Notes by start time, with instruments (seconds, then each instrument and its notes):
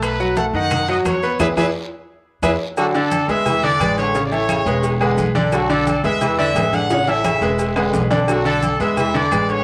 Already playing: upright bass B1, grand piano A3 A4 A5
0.02 trumpet section B4, high bongo, high conga, high timbale, long guiro, claves, maracas
0.20 grand piano F#3 F#4 F#5, high conga, maracas
0.37 grand piano A3 A4 A5, trumpet section F#5, high bongo, high conga, high timbale, short guiro, maracas
0.53 upright bass F#2, grand piano D#3 D#4 D#5, trumpet section F#5, high bongo, high conga, short guiro, maracas
0.71 high bongo, high conga, low conga, high timbale, long guiro, claves, maracas
0.88 grand piano F#3 F#4 F#5, trumpet section D#5, high bongo, high conga, high timbale, maracas
1.05 upright bass E2, trumpet section C#5, high bongo, low bongo, high conga, high timbale, short guiro, claves, maracas
1.23 grand piano B3 B4 B5, high bongo, short guiro, maracas
1.39 upright bass E2, grand piano E4 G#4 B4, trumpet section G#4 B4 E5, low bongo, high conga, high timbale, long guiro, claves, maracas
1.56 upright bass E2, grand piano E4 G#4 B4, trumpet section G#4 B4 E5, low bongo, high conga, high timbale, long guiro, claves, maracas
2.42 upright bass E2, grand piano E4 G#4 B4, trumpet section G#4 B4 E5, low bongo, high conga, high timbale, long guiro, claves, maracas
2.77 trombone section D3, grand piano F#3 F#4 A4, trumpet section F#4, cowbell, high conga, low agogo, long guiro, claves, maracas
2.94 grand piano D3 D4 D5, trumpet section A4, cowbell, high conga, low agogo, maracas
3.11 cowbell, high conga, low agogo, short guiro, maracas
3.28 upright bass E2, grand piano G#3 G#4 B4, trumpet section E5, cowbell, short guiro, maracas
3.46 trombone section E3, cowbell, high conga, low conga, low agogo, long guiro, claves, maracas
3.63 grand piano D3 D4 D5, trumpet section D5, high conga, low conga, maracas
3.80 upright bass A1, grand piano G#3 G#4 B4, cowbell, high conga, low agogo, short guiro, claves, maracas
3.97 trombone section D3, trumpet section C#5, cowbell, low agogo, short guiro, maracas
4.14 grand piano C#3 C#4 C#5, cowbell, long guiro, maracas
4.25 trumpet section D5
4.32 grand piano E3 E4 A4, trumpet section C#5, high conga, low agogo, maracas
4.49 trombone section C#3, cowbell, high conga, low agogo, short guiro, claves, maracas
4.66 upright bass E1, grand piano G#3 G#4 B4, cowbell, high conga, short guiro, maracas
4.83 cowbell, high conga, low agogo, long guiro, maracas
5.00 trombone section D3, grand piano G#3 G#4 B4, high conga, low agogo, claves, maracas
5.17 upright bass B1, cowbell, high conga, short guiro, maracas
5.35 grand piano D3 D4 D5, cowbell, high conga, low agogo, short guiro, maracas
5.52 trombone section D3, grand piano F#3 F#4 A4, trumpet section F#4, cowbell, high conga, low agogo, long guiro, claves, maracas
5.69 grand piano D3 D4 D5, trumpet section A4, cowbell, high conga, low agogo, maracas
5.87 trumpet section A4, cowbell, high conga, low agogo, short guiro, maracas
6.04 upright bass E2, grand piano G#3 G#4 B4, trumpet section E5, cowbell, short guiro, maracas
6.21 trombone section E3, cowbell, high conga, low conga, low agogo, long guiro, claves, maracas
6.38 grand piano D3 D4 D5, trumpet section E5, high conga, maracas
6.55 upright bass A1, grand piano G#3 G#4 B4, cowbell, high conga, low timbale, low agogo, short guiro, claves, maracas
6.72 trombone section D3, trumpet section F#5, cowbell, high conga, low agogo, short guiro, maracas
6.90 grand piano C#3 C#4 C#5, cowbell, high timbale, long guiro, maracas
7.07 grand piano E3 E4 A4, trumpet section E5, high conga, high timbale, low agogo, maracas
7.24 trombone section C#3, cowbell, high conga, low agogo, short guiro, claves, maracas
7.41 upright bass E1, grand piano G#3 G#4 B4, cowbell, high conga, low timbale, short guiro, maracas
7.59 cowbell, high conga, low agogo, long guiro, maracas
7.76 trombone section D3, grand piano G#3 G#4 B4, high conga, low timbale, low agogo, claves, maracas
7.93 upright bass B1, cowbell, high conga, low timbale, short guiro, maracas
8.10 grand piano D3 D4 D5, cowbell, high conga, low timbale, low agogo, short guiro, maracas
8.28 trombone section D3, grand piano F#3 F#4 A4, trumpet section F#4, cowbell, high conga, low agogo, long guiro, claves, maracas
8.45 grand piano D3 D4 D5, trumpet section A4, cowbell, high conga, low agogo, maracas
8.62 cowbell, high conga, low agogo, short guiro, maracas
8.80 upright bass E2, grand piano G#3 G#4 B4, trumpet section E5, cowbell, short guiro, maracas
8.97 trombone section E3, trumpet section E5, cowbell, high conga, low conga, low agogo, long guiro, claves, maracas
9.14 grand piano D3 D4 D5, trumpet section D5, high conga, low conga, maracas
9.31 upright bass A1, grand piano G#3 G#4 B4, cowbell, high conga, low agogo, short guiro, claves, maracas
9.49 trombone section D3, trumpet section C#5, cowbell, low agogo, short guiro, maracas